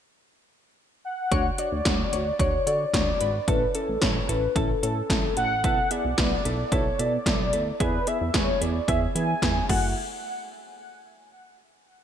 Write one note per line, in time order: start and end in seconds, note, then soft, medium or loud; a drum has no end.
1.05 1.60 F#5 loud
1.32 1.51 D2 loud
1.32 1.46 D4 loud
1.32 1.46 F#4 medium
1.32 1.46 C#5 loud
1.32 kick loud
1.32 closed hi-hat medium
1.58 1.73 D4 medium
1.58 1.73 F#4 medium
1.58 1.73 C#5 medium
1.58 2.33 D5 loud
1.58 closed hi-hat medium
1.72 1.82 D2 medium
1.85 2.05 D2 loud
1.85 2.00 D4 medium
1.85 2.00 F#4 medium
1.85 2.00 C#5 medium
1.85 kick loud
1.85 snare loud
1.85 closed hi-hat medium
2.12 2.32 D2 loud
2.12 2.27 D4 medium
2.12 2.27 F#4 medium
2.12 2.27 C#5 medium
2.12 closed hi-hat medium
2.33 2.41 D5 medium
2.39 2.58 D2 loud
2.39 2.54 D4 medium
2.39 2.54 F#4 medium
2.39 2.54 C#5 loud
2.39 2.68 C#5 loud
2.39 kick loud
2.39 closed hi-hat medium
2.67 2.86 D3 loud
2.67 2.81 D4 medium
2.67 2.81 F#4 medium
2.67 2.81 C#5 medium
2.67 3.49 D5 loud
2.67 closed hi-hat medium
2.94 3.13 D2 loud
2.94 3.08 D4 medium
2.94 3.08 F#4 medium
2.94 3.08 C#5 medium
2.94 kick loud
2.94 snare loud
2.94 closed hi-hat medium
3.21 3.40 G#1 medium
3.21 3.35 D4 medium
3.21 3.35 F#4 medium
3.21 3.35 B4 medium
3.21 closed hi-hat medium
3.48 3.67 A1 loud
3.48 3.62 C#4 medium
3.48 3.62 E4 medium
3.48 3.62 A4 loud
3.48 3.76 B4 loud
3.48 kick loud
3.48 closed hi-hat medium
3.75 3.89 C#4 medium
3.75 3.89 E4 medium
3.75 3.89 A4 medium
3.75 4.04 A4 medium
3.75 closed hi-hat medium
3.88 3.98 A1 medium
4.02 4.21 A1 loud
4.02 4.16 C#4 medium
4.02 4.16 E4 medium
4.02 4.16 A4 medium
4.02 4.31 C#5 medium
4.02 kick loud
4.02 snare loud
4.02 closed hi-hat medium
4.29 4.48 A1 loud
4.29 4.43 C#4 medium
4.29 4.43 E4 medium
4.29 4.43 A4 medium
4.29 4.58 B4 medium
4.29 closed hi-hat medium
4.56 4.75 A1 loud
4.56 4.70 C#4 medium
4.56 4.70 E4 medium
4.56 4.70 A4 loud
4.56 4.83 A4 loud
4.56 kick loud
4.56 closed hi-hat medium
4.83 5.02 A2 loud
4.83 4.97 C#4 medium
4.83 4.97 E4 medium
4.83 4.97 A4 medium
4.83 5.33 A4 loud
4.83 closed hi-hat medium
5.10 5.29 A1 loud
5.10 5.24 C#4 medium
5.10 5.24 E4 medium
5.10 5.24 A4 medium
5.10 kick loud
5.10 snare loud
5.10 closed hi-hat medium
5.37 5.66 A1 medium
5.37 5.51 C#4 medium
5.37 5.51 E4 medium
5.37 5.51 A4 medium
5.37 5.93 F#5 loud
5.37 closed hi-hat medium
5.64 5.83 B1 loud
5.64 5.78 B3 medium
5.64 5.78 E4 medium
5.64 5.78 A4 loud
5.64 kick loud
5.64 closed hi-hat medium
5.91 6.05 B3 medium
5.91 6.05 E4 medium
5.91 6.05 G#4 medium
5.91 6.74 D5 loud
5.91 closed hi-hat medium
6.05 6.14 B1 medium
6.18 6.37 B1 loud
6.18 6.32 B3 medium
6.18 6.32 E4 medium
6.18 6.32 B4 medium
6.18 kick loud
6.18 snare loud
6.18 closed hi-hat medium
6.45 6.64 B1 medium
6.45 6.59 B3 medium
6.45 6.59 E4 medium
6.45 6.59 A4 medium
6.45 closed hi-hat medium
6.72 6.91 B1 loud
6.72 6.86 B3 medium
6.72 6.86 E4 medium
6.72 6.86 A4 loud
6.72 7.01 C#5 loud
6.72 kick loud
6.72 closed hi-hat medium
6.99 7.18 B2 loud
6.99 7.13 B3 medium
6.99 7.13 E4 medium
6.99 7.13 A4 medium
6.99 7.80 D5 loud
6.99 closed hi-hat medium
7.26 7.55 B1 loud
7.26 7.40 B3 medium
7.26 7.40 E4 medium
7.26 7.40 A4 medium
7.26 kick loud
7.26 snare loud
7.26 closed hi-hat medium
7.53 7.72 D2 medium
7.53 7.67 B3 medium
7.53 7.67 E4 medium
7.53 7.67 A4 medium
7.53 closed hi-hat medium
7.80 7.99 E2 loud
7.80 7.94 B3 medium
7.80 7.94 E4 medium
7.80 7.94 G#4 loud
7.80 8.09 B4 loud
7.80 kick loud
7.80 closed hi-hat medium
8.07 8.21 B3 medium
8.07 8.21 E4 medium
8.07 8.21 G#4 medium
8.07 8.36 E5 loud
8.07 closed hi-hat medium
8.21 8.30 E2 medium
8.34 8.53 E2 loud
8.34 8.48 B3 medium
8.34 8.48 E4 medium
8.34 8.48 G#4 medium
8.34 8.63 C#5 loud
8.34 kick loud
8.34 snare loud
8.34 closed hi-hat medium
8.61 8.80 E2 loud
8.61 8.75 B3 medium
8.61 8.75 E4 medium
8.61 8.75 G#4 medium
8.61 8.88 D5 loud
8.61 closed hi-hat medium
8.88 9.07 E2 loud
8.88 9.02 B3 medium
8.88 9.02 E4 medium
8.88 9.02 G#4 loud
8.88 9.01 E5 loud
8.88 kick loud
8.88 closed hi-hat medium
9.15 9.34 E3 loud
9.15 9.29 B3 medium
9.15 9.29 E4 medium
9.15 9.29 G#4 medium
9.15 9.66 G#5 loud
9.15 closed hi-hat medium
9.42 9.61 E2 loud
9.42 9.56 B3 medium
9.42 9.56 E4 medium
9.42 9.56 G#4 medium
9.42 kick loud
9.42 snare loud
9.42 closed hi-hat medium
9.69 9.95 F#1 loud
9.69 9.95 A3 medium
9.69 9.95 E4 medium
9.69 9.95 F#4 medium
9.69 9.95 F#5 medium
9.69 kick loud
9.69 crash medium